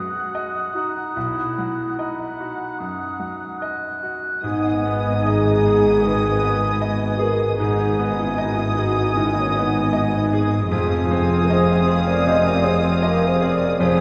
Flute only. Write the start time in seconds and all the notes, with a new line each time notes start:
Already playing: D#6
1.96 B5
2.79 D#6
3.61 F#6
4.44 D#6
7.59 D#6
10.72 D#6
13.81 D#6